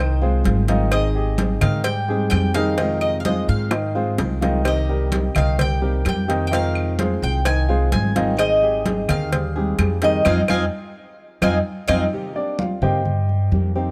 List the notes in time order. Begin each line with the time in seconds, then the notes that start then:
Already playing: C2 C5
0.00 D#3 D#4 D#5
0.21 D#3 G#3 C4 F4 G#4 C5, high conga
0.45 G#1 D#3 G#3 C4 F4, cowbell, high conga
0.68 D#3 G#3 C4 D#4 F4 D#5, cowbell, high conga
0.92 D#3 C4 D#4 G#4 D#5, cowbell, high conga, claves
1.15 G4 G#4, high conga
1.38 C4 D#4 G#4, cowbell, high conga
1.61 G#2 D#3 D#4 D#5 F5, cowbell, high conga, low conga, claves
1.84 G3 G4 G#4 G5, muted nylon-string guitar stroke, cowbell, high conga
2.08 G3 G#3 C4 D#4 G4 G#4, high conga
2.30 F2 G3 C4 D#4 G#4 G5, cowbell, high conga, claves
2.54 D#3 G3 C4 D#4 G#4 D#5 F5, cowbell
2.78 C3 D#3 G#3 C4 D#4 F4 D#5, cowbell, high conga
3.01 D#5, high conga, claves
3.20 F5
3.24 D#3 G#3 C4 F4 G#4 C5 D#5, cowbell, high conga
3.48 G#2 F5, high conga
3.71 D#3 D#4 D#5, muted nylon-string guitar stroke, cowbell, high bongo, high conga, claves
3.95 D#3 G#3 C4 F4 G#4 C5, high conga
4.18 C2 D#3 G#3 C4 F4, cowbell, low bongo, high conga
4.41 D#3 G#3 C4 D#4 F4 D#5, cowbell, low bongo, high conga
4.64 C3 D#3 A#3 C4 G4 D#5, cowbell, high conga, claves
4.89 G3 G4 A#4, high conga
5.11 D#3 A#3 C4 G4, cowbell, high conga
5.35 C2 D#3 D#4 D#5 F5, cowbell, high conga, low conga, claves
5.58 G3 G4 A#4 G5, muted nylon-string guitar stroke, cowbell, high conga, low conga
5.82 D#3 G3 A#3 C4 G4 A#4, high conga
6.05 F2 D#3 A#3 C4 G4 G5, cowbell, high conga, claves
6.28 D#3 A#3 C4 D#4 G4 D#5, cowbell, high conga
6.47 G5
6.51 C3 D#3 G#3 C4 D#4 F4 D#5 F5, cowbell, high conga
6.75 high conga, claves
6.99 D#3 G#3 C4 F4 G#4 C5, cowbell, high conga
7.22 C2 G5, high conga
7.45 D#3 D#4 D#5 G#5, muted nylon-string guitar stroke, cowbell, high conga, claves
7.68 D#3 G#3 C4 F4 G#4 C5, high conga
7.92 G#1 D#3 G#3 C4 F4 G#5, cowbell, high conga
8.16 D#3 G#3 C4 D#4 F4 D#5, cowbell, high conga
8.38 D#3 C4 D#4 G#4 D#5, cowbell, high conga, claves
8.62 G4 G#4, high conga
8.86 C4 D#4 G#4, cowbell, high conga
9.08 D#2 D#3 D#4 D#5 F5, cowbell, high conga, low conga, claves
9.32 G3 G4 G#4, muted nylon-string guitar stroke, cowbell, high conga, low conga
9.56 G3 G#3 C4 D#4 G4 G#4, high conga
9.78 F2 G3 C4 D#4 G#4, cowbell, high conga, claves
10.02 D#3 G3 C4 D#4 G#4 D#5, cowbell, high conga
10.25 F2 C4 D#4 F4 D#5 F5 G#5, cowbell, high conga, claves
10.48 F2 C4 D#4 F4 D#5 F5 G#5, cowbell, high conga, claves
11.42 F2 C4 D#4 F4 D#5 F5 G#5, cowbell, high conga, claves
11.88 F2 C4 D#4 F4 D#5 F5 G#5, cowbell, high conga, claves
12.12 C3 D#3 A#3 C4 G4, high conga
12.35 A#3 C4 D4 G4 D5, high conga
12.59 F4 F5, high conga
12.82 G2 D#3 A#3 C4 G4 C5 D#5 G5, high conga, low conga
13.05 muted nylon-string guitar stroke, high conga, low conga
13.29 high conga
13.52 F2 D#3 A#3 C4 G4, high conga
13.75 D#3 A#3 C4 D#4 G4 C5, high conga